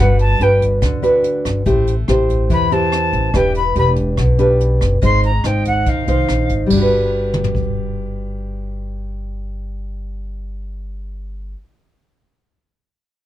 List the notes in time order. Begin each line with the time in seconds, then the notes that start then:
0.00 G1 G3 D4 F#4 B4 F#5
0.19 A5, closed hi-hat
0.40 G1 D4 F#4 B4 G5, closed hi-hat
0.61 kick, closed hi-hat
0.82 D2 D3, kick, cross-stick, closed hi-hat
1.02 D4 F#4 B4, closed hi-hat
1.24 closed hi-hat
1.45 G1, kick, cross-stick, closed hi-hat
1.66 A1 A3 E4 G4 C5, kick, closed hi-hat
1.87 closed hi-hat
2.08 A1 E4 G4 C5, cross-stick, closed hi-hat
2.29 kick, closed hi-hat
2.50 E2 E3 B5, kick, closed hi-hat
2.71 E4 G4 C5 A5, closed hi-hat
2.92 cross-stick, closed hi-hat
3.13 A1, kick, closed hi-hat
3.33 E1 E3 D4 G4 B4 G5, kick, cross-stick, closed hi-hat
3.55 B5, closed hi-hat
3.75 E1 D4 G4 B4 B5, closed hi-hat
3.96 kick, closed hi-hat
4.17 B1 B2, kick, cross-stick, closed hi-hat
4.39 D4 G4 B4, closed hi-hat
4.61 closed hi-hat
4.81 F#1, kick, cross-stick, closed hi-hat
5.02 G#1 G#3 D#4 F4 C5 C6, kick, closed hi-hat
5.23 A#5, closed hi-hat
5.44 G#1 D#4 F4 C5 G5, cross-stick, closed hi-hat
5.65 F#5, kick, closed hi-hat
5.86 D#2 D#3 F5, kick, closed hi-hat
6.07 C2 D#4 F4 C5, closed hi-hat
6.28 A#1, cross-stick, closed hi-hat
6.49 G#1, kick, closed hi-hat
6.66 G1 G3, crash
6.71 D4, kick
6.77 F#4
6.82 B4
7.34 mid tom
7.44 floor tom
7.55 kick